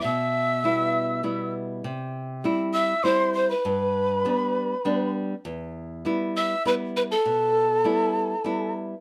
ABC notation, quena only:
X:1
M:3/4
L:1/16
Q:1/4=100
K:Em
V:1 name="Quena"
e'8- e'2 z2 | z6 e'2 c'2 c' b- | b8- b2 z2 | z6 e'2 b2 b a- |
a8- a2 z2 |]